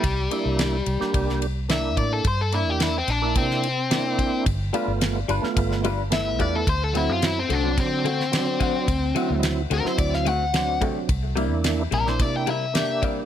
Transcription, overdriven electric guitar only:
\new Staff \with { instrumentName = "Overdriven electric guitar" } { \time 4/4 \key c \major \tempo 4 = 109 g2~ g8 r8 e''8 d''16 a'16 | c''16 a'16 e'16 g'16 e'16 c'16 d'8 c'2 | r2. e''8 d''16 a'16 | c''16 a'16 e'16 f'16 e'16 c'16 d'8 c'2~ |
c'4 r8 bes'16 c''16 d''16 f''16 fis''4 r8 | r4. bes'16 c''16 d''16 g''16 e''4 r8 | }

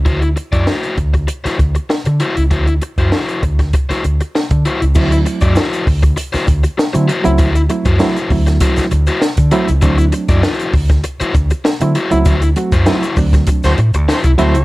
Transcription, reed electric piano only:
\new Staff \with { instrumentName = "Reed electric piano" } { \time 4/4 \key d \mixolydian \tempo 4 = 99 r1 | r1 | <fis a c' e'>4 r2 r16 <fis a c' e'>16 r16 <fis a c' e'>16~ | <fis a c' e'>16 r16 <fis a c' e'>16 r16 <fis a c' e'>16 r16 <fis a c' e'>4 r4 <fis a c' e'>16 r16 |
<fis a c' d'>4 r2 r16 <fis a c' e'>16 r16 <fis a c' e'>16~ | <fis a c' e'>16 r16 <fis a c' fis'>16 r16 <fis a c' e'>16 r16 <fis a c' d'>4 r4 <fis a c' e'>16 r16 | }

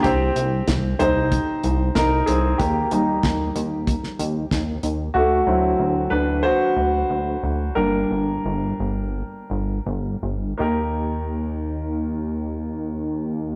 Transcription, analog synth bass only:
\new Staff \with { instrumentName = "Analog synth bass" } { \clef bass \time 4/4 \key ees \major \tempo 4 = 92 c,8 c,8 c,8 c,8. r16 c,8 c,8 c,8 | ees,8 ees,8 ees,8 ees,8. r16 ees,8 ees,8 ees,8 | d,8 d,8 d,8 d,8. r16 d,8 d,8 d,8 | g,,8 g,,8 g,,8 g,,8. r16 g,,8 g,,8 g,,8 |
ees,1 | }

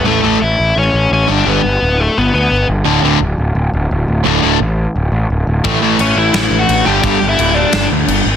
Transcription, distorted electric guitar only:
\new Staff \with { instrumentName = "Distorted electric guitar" } { \clef bass \time 4/4 \key a \mixolydian \tempo 4 = 172 <a, e a>8 <a, e a>8 r2 r8 <g, d g>8 | <g, d g>8 r2. r8 | <d, a, d>8 <d, a, d>8 r2. | <d, a, d>8 <d, a, d>8 r2. |
<a, e a>8 <a, e a>8 r2 r8 <g, d g>8 | <g, d g>8 r2. r8 | }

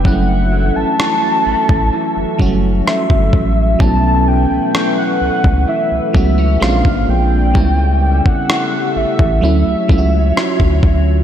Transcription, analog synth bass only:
\new Staff \with { instrumentName = "Analog synth bass" } { \clef bass \time 4/4 \key fis \phrygian \tempo 4 = 64 fis,,8. a,,16 r8 a,,16 a,,16 r16 fis,,16 fis,,8 r16 g,,16 a,,8 | b,,8. cis,16 r8 cis,16 cis,16 r16 cis,16 cis,8 ais,,16 gis,,16 ais,,8 | cis,8. a,,16 r8 a,,16 a,,16 d,16 cis,16 cis,8 r16 d,16 d,8 | }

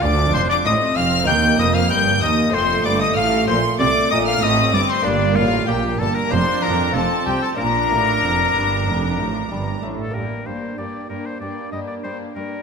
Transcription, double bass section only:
\new Staff \with { instrumentName = "Double bass section" } { \clef bass \time 4/4 \key bes \major \tempo 4 = 95 d,8 f,,8 a,,8 f,,8 ees,8 f,,8 g,,8 ees,8 | f,,8 g,,8 a,,8 bes,,8 c,8 bes,,8 a,,8 g,,8 | g,,8 a,,8 bes,,8 g,,8 f,,8 f,8 f,,8 c,8 | bes,,8 a,,8 f,,8 g,,8 f,,8 a,,8 g,,8 a,,8 |
\key g \minor r1 | }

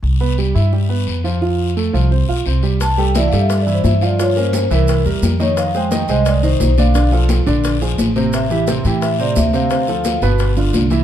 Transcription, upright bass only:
\new Staff \with { instrumentName = "Upright bass" } { \clef bass \time 4/4 \key c \major \tempo 4 = 174 c,4. g,4. f,4~ | f,4. c,4 b,,8 c,4~ | c,4. g,4. g,4~ | g,4. c,4 e,8 f,4~ |
f,4. c,4. b,,4~ | b,,4. bes,,4. a,,4~ | a,,4. a,4. d,4~ | d,4. g,,4. c,4 | }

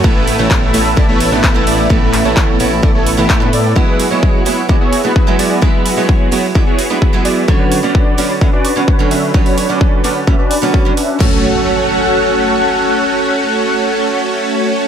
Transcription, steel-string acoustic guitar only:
\new Staff \with { instrumentName = "Steel-string acoustic guitar" } { \time 4/4 \key fis \minor \tempo 4 = 129 <a, e a b e'>8. <a, e a b e'>8. <a, e a b e'>8 <a, e a b e'>16 r8 <a, e a b d'>16 r16 <a, e a b e'>8. | <a, e a b e'>8. <a, e a b e'>8. <a, e a b e'>8 <a, e a b e'>16 r8 <a, e a b e'>8 <a, e a b d'>16 r8 | <fis gis b e'>8. <fis gis b e'>8. <fis gis b e'>8 <fis gis b e'>16 r8 <fis gis b d'>16 r16 <fis gis b e'>8. | <fis gis b e'>8. <fis gis b e'>8. <fis gis b e'>8 <fis gis b e'>16 r8 <fis gis b d'>16 r16 <fis gis b e'>8. |
<d fis b cis''>8. <d fis b cis'>8. <d fis b cis'>8 <d fis b cis'>16 r8 <d fis b cis'>16 r16 <d fis b cis'>8. | <d fis b cis''>8. <d fis b cis'>8. <d fis b cis'>8 <d fis b cis'>16 r8 <d fis b cis'>8 <d fis b cis'>16 r8 | <fis a cis' fis'>1~ | <fis a cis' fis'>1 | }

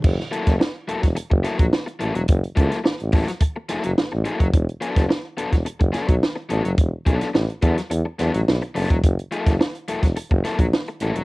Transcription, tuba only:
\new Staff \with { instrumentName = "Tuba" } { \clef bass \time 4/4 \key e \lydian \tempo 4 = 107 fis,,16 r8 fis,,16 r8 e,,16 e,,16 r16 fis,,16 r16 ais,,16 r8 a,,16 e,,16 | fis,,16 r16 cis,16 r16 a,,16 a,,8 r8. fis,,16 fis,,16 a,,16 a,,16 r16 fis,,16 | e,,16 r8 fis,,16 r8 e,,16 e,,16 r16 fis,,16 r16 b,,16 r8 a,,16 fis,,16 | e,,16 r16 b,,16 r16 a,,16 r16 e,16 r16 e,16 r16 e,16 a,,16 b,,16 r16 fis,,16 e,,16 |
fis,,16 r8 fis,,16 r8 e,,16 e,,16 r16 fis,,16 r16 ais,,16 r8 a,,16 e,,16 | }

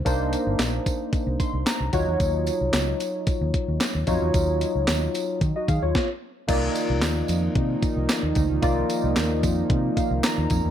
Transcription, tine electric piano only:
\new Staff \with { instrumentName = "Tine electric piano" } { \time 4/4 \key c \minor \tempo 4 = 112 << { r2 r8 c'''8 bes''8 ges''8 | r1 | r2 r16 <ges' ees''>16 <aes' f''>16 <f' des''>8 r8. | r1 |
r2 r8 f''8 bes''4 | } \\ { <bes d' ees' c''>2.~ <bes d' ees' c''>8 <ges ees' f' des''>8~ | <ges ees' f' des''>2.~ <ges ees' f' des''>8 <ges ees' f' des''>8~ | <ges ees' f' des''>2. r4 | <bes ees' f' d''>1 |
<bes ees' f' d''>1 | } >> }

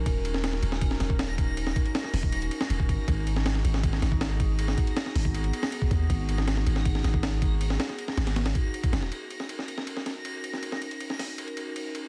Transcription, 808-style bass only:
\new Staff \with { instrumentName = "808-style bass" } { \clef bass \time 4/4 \key ees \minor \tempo 4 = 159 ees,,4. ees,,4 ees,,4.~ | ees,,8 r4 ees,,4 r8 ees,,8 aes,,16 r16 | aes,,4. aes,,4 aes,,4.~ | aes,,8 r4 aes,,4 r4 ees,8 |
aes,,4. aes,,4 aes,,4.~ | aes,,8 r4 aes,,4 r4 ges,,16 ees,,16 | r1 | r1 | }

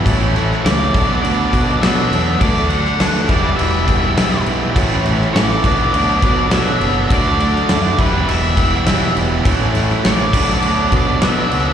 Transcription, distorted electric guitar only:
\new Staff \with { instrumentName = "Distorted electric guitar" } { \time 4/4 \key b \minor \tempo 4 = 102 <a, e a cis' e'>4. <b, fis b d' fis'>4. <b, fis b d' fis'>4 | <d a d' fis'>4. <e, b, e g b e'>4. <e, b, e g b e'>4 | <a, e a cis' e'>4. <b, fis b d' fis'>4. <b, fis b d' fis'>4 | <d a d' fis'>4. <e, b, e g b e'>4. <e, b, e g b e'>4 |
<a, e a cis' e'>4. <b, fis b d' fis'>4. <b, fis b d' fis'>4 | }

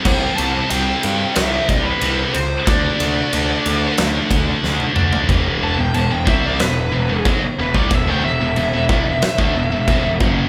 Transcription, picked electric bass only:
\new Staff \with { instrumentName = "Picked electric bass" } { \clef bass \time 4/4 \key e \minor \tempo 4 = 92 c,8 c,8 c,8 g,8 c,8 c,8 c,8 cis,8 | d,8 d,8 d,8 d,8 d,8 d,8 d,8 d,8 | e,,8. e,,16 e,,16 e,,16 c,8 e,,8 e,,16 e,,16 b,,16 r16 e,,16 c,16 | e,,16 d,16 e,,16 e,,16 e,,16 e,,16 c,16 e,,16 r16 d,16 e,,16 e,,16 e,,16 e,,16 fis,,8 | }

